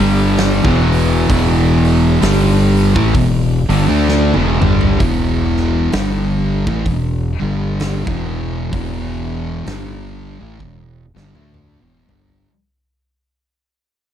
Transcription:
0.00 0.60 G1 loud
0.00 0.62 G2 medium
0.00 0.63 D3 loud
0.00 0.63 G3 loud
0.00 open hi-hat medium
0.37 snare loud
0.37 open hi-hat medium
0.64 1.25 E1 loud
0.64 1.28 E2 medium
0.64 1.28 B2 loud
0.64 1.29 E3 loud
0.64 kick loud
0.92 open hi-hat medium
1.29 2.18 E1 loud
1.29 2.21 E2 medium
1.29 2.21 B2 medium
1.29 2.22 E3 loud
1.29 kick loud
1.29 open hi-hat loud
1.84 open hi-hat medium
2.22 2.92 G1 medium
2.22 2.94 G2 medium
2.22 2.94 D3 loud
2.22 2.95 G3 loud
2.22 snare loud
2.22 open hi-hat loud
2.77 open hi-hat medium
2.96 3.13 A1 loud
2.96 3.14 A2 medium
2.96 3.14 E3 loud
2.96 kick loud
3.14 3.65 E1 medium
3.14 3.59 E2 medium
3.14 3.59 B2 medium
3.14 kick loud
3.14 open hi-hat medium
3.69 3.87 G1 loud
3.69 3.87 G2 medium
3.69 3.87 D3 loud
3.69 open hi-hat medium
3.88 4.31 D2 loud
3.88 4.33 D3 medium
3.88 4.34 A3 medium
3.88 4.34 D4 medium
4.08 snare medium
4.34 4.60 E1 medium
4.34 4.60 E2 loud
4.34 4.61 B2 loud
4.34 high tom medium
4.62 4.98 G1 medium
4.62 4.99 G2 loud
4.62 5.00 D3 loud
4.62 5.00 G3 loud
4.62 mid tom medium
4.81 floor tom medium
5.00 5.89 E1 loud
5.00 5.92 E2 medium
5.00 5.92 B2 loud
5.00 5.93 E3 medium
5.00 kick loud
5.00 open hi-hat medium
5.57 snare soft
5.92 6.63 G1 medium
5.92 6.66 G2 medium
5.92 6.66 D3 loud
5.92 6.66 G3 loud
5.92 snare loud
5.92 open hi-hat medium
6.67 6.85 A1 medium
6.67 6.85 A2 medium
6.67 6.86 E3 loud
6.67 kick loud
6.86 7.37 E1 medium
6.86 7.31 E2 medium
6.86 7.31 B2 medium
6.86 kick medium
6.86 open hi-hat medium
7.41 8.03 G1 loud
7.41 8.05 G2 medium
7.41 8.06 D3 medium
7.41 8.06 G3 medium
7.80 snare loud
7.80 open hi-hat medium
8.06 8.69 E1 loud
8.06 8.71 E2 loud
8.06 8.72 B2 medium
8.06 8.72 E3 loud
8.06 kick loud
8.73 9.62 E1 medium
8.73 9.65 E2 medium
8.73 9.66 B2 medium
8.73 9.66 E3 loud
8.73 kick loud
8.73 open hi-hat medium
9.65 10.37 G1 medium
9.65 10.39 G2 loud
9.65 10.40 D3 loud
9.65 10.40 G3 medium
9.65 snare loud
9.65 open hi-hat medium
10.40 10.59 A1 loud
10.40 10.59 A2 medium
10.40 10.59 E3 loud
10.59 11.12 E1 medium
10.59 11.04 E2 medium
10.59 11.04 B2 medium
10.59 kick medium
11.14 11.33 G1 loud
11.14 11.33 G2 medium
11.14 11.33 D3 medium
11.14 snare medium
11.34 11.78 D2 medium
11.34 11.80 D3 medium
11.34 11.80 A3 medium
11.34 11.80 D4 medium
11.34 mid tom medium
11.54 mid tom medium
11.80 12.07 E1 medium
11.80 12.07 E2 medium
11.80 12.07 B2 medium
12.07 12.44 G1 medium
12.07 12.45 G2 medium
12.07 12.46 D3 medium
12.07 12.46 G3 medium
12.07 floor tom medium
12.28 floor tom medium

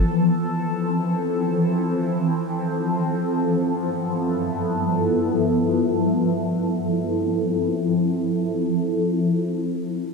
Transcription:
0.00 3.38 E3 medium
0.00 3.38 F3 medium
0.00 3.38 C4 medium
0.00 3.38 A4 medium
3.42 6.76 G2 medium
3.42 6.76 F3 medium
3.42 6.76 B3 medium
3.42 6.76 E4 medium
3.42 6.76 A4 medium
6.80 10.14 F3 medium
6.80 10.14 C4 medium
6.80 10.14 E4 medium
6.80 10.14 A4 medium

